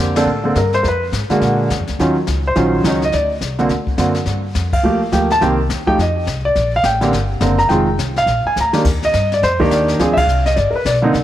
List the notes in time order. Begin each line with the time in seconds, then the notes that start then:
Already playing: F2 D3 A#3 C4 G4
0.16 D3 A#3 C4 D4 A4, snare, ride
0.26 A2, brush sweep
0.44 D3 A#3 C4 A4
0.55 G2 A#4, kick, snare, hi-hat pedal
0.73 C5, snare
0.83 F2 A#4, brush sweep, kick, snare
0.88 B4
1.12 G#2, kick, snare, hi-hat pedal
1.30 D3 G#3 A#3 F#4, muted upright bass stroke, snare
1.41 A#2, brush sweep, kick, snare
1.70 F#2, kick, snare, hi-hat pedal
1.80 F2
1.87 D2, snare
1.99 D#2 D#3 F#3 C#4 F4, brush sweep, kick, snare
2.27 C#2, kick, snare, hi-hat pedal
2.47 C5
2.55 A#1 D#3 F#3 C#4 F4, brush sweep, kick, snare
2.84 C#2 D#3 F#3 C#4 D#4, kick, snare, hi-hat pedal
2.88 C#5
3.02 D#5, snare
3.12 D2 D5, brush sweep, kick, snare
3.41 C2, kick, snare, hi-hat pedal
3.59 D3 A#3 C4 F#4, snare
3.69 D2, brush sweep, kick, snare
3.87 kick
3.98 F#2 D3 A#3 C4 F#4, snare, hi-hat pedal
4.15 snare
4.26 G2, brush sweep, kick, snare
4.55 F2, kick, snare, hi-hat pedal
4.73 F5, kick, ride
4.83 D#2 F3 A3 A#3 G4, brush sweep
5.12 D2 F3 A3 A#3 G4 G5, kick, snare, hi-hat pedal
5.30 A5, snare
5.41 C2 D#3 A#3 C4 G4 G5, brush sweep, kick, snare
5.69 D#2, kick, snare, hi-hat pedal
5.87 F3 A3 D#4 G4 G5, kick
5.98 F2 D#5, brush sweep, snare
6.26 C2, kick, snare, hi-hat pedal
6.45 D5
6.55 A#1, brush sweep, kick, snare
6.76 F5
6.83 A1 G5, kick, snare, hi-hat pedal
7.01 D3 A#3 C4 G4, snare
7.12 G1, brush sweep, kick, snare
7.41 F#1 D3 A#3 C4 A#4, kick, snare, hi-hat pedal
7.59 A#5, snare
7.69 F1 D#3 G#3 C4 F4 G5, brush sweep, kick, snare
7.98 C2, kick, snare, hi-hat pedal
8.16 F5, snare
8.26 A#1, brush sweep, kick, snare
8.45 G#5, muted upright bass stroke
8.56 D2, snare, hi-hat pedal
8.61 A#5
8.73 D#3 A#3 D4 G4, snare
8.85 D#2, brush sweep, kick, snare, crash
9.02 D#5, snare
9.13 G2, kick, snare, hi-hat pedal
9.32 D5, snare
9.42 F2 C5, brush sweep, kick, snare
9.60 D#3 A#3 D4 G4 A#4, kick
9.70 D#2 D5, snare, hi-hat pedal
9.88 snare
9.99 D2 F3 C4 D4 G#4, brush sweep, kick, snare
10.13 E5, kick, ride
10.18 F5
10.26 C2, hi-hat pedal
10.46 D#5, snare
10.56 G1 D5, brush sweep, kick, snare
10.71 A#4, muted upright bass stroke
10.76 B4
10.85 B1 D5, kick, snare, hi-hat pedal
11.02 D3 A#3 C4 D#4
11.13 C2, brush sweep, kick, snare